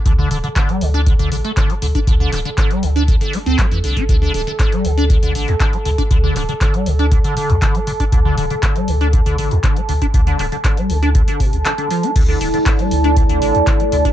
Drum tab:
CC |----------------|----------------|----------------|----------------|
HH |x-oxxxoxxxoxxxox|x-oxxxoxxxoxxxox|x-oxxxoxxxoxxxox|x-oxxxoxxxoxxxox|
CP |----x-------x---|--x-x-------x---|----x-------x---|--x-x-------x---|
BD |o---o---o---o--o|o---o---o---o--o|o---o---o---o--o|o---o---o---o--o|

CC |----------------|----------------|x---------------|
HH |x-oxxxoxxxoxxxox|xxoxxxoxxxoxxxox|x-oxxxoxxxoxxxox|
CP |----x-------x---|--x-x-------x---|----x-------x---|
BD |o---o---o---o--o|o---o---o-o-----|o---o---o---o--o|